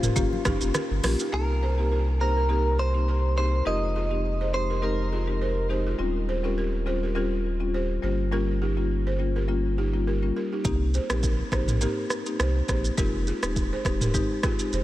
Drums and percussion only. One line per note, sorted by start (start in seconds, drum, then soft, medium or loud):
0.03 mid tom medium
0.03 shaker medium
0.16 kick medium
0.16 low conga medium
0.16 shaker medium
0.33 high conga medium
0.45 kick loud
0.45 cross-stick loud
0.45 high conga medium
0.45 shaker medium
0.61 shaker medium
0.74 cross-stick loud
0.74 low conga medium
0.74 shaker medium
1.03 cross-stick medium
1.03 open hi-hat medium
1.03 high conga medium
1.03 shaker medium
1.20 shaker medium
10.65 kick loud
10.65 shaker medium
10.94 shaker medium
11.10 cross-stick loud
11.10 shaker medium
11.23 kick medium
11.23 shaker medium
11.52 kick medium
11.52 cross-stick medium
11.52 shaker soft
11.68 mid tom medium
11.68 shaker medium
11.81 shaker medium
12.10 cross-stick medium
12.10 shaker medium
12.26 shaker medium
12.40 cross-stick loud
12.40 shaker medium
12.69 kick medium
12.69 cross-stick medium
12.69 shaker medium
12.85 shaker medium
12.98 kick loud
12.98 shaker medium
13.27 shaker medium
13.43 cross-stick loud
13.43 shaker medium
13.56 kick medium
13.56 shaker medium
13.85 kick medium
13.85 cross-stick medium
13.85 shaker soft
14.01 mid tom medium
14.01 shaker medium
14.14 kick medium
14.14 shaker medium
14.43 kick medium
14.43 cross-stick loud
14.43 shaker medium
14.59 shaker medium
14.73 shaker medium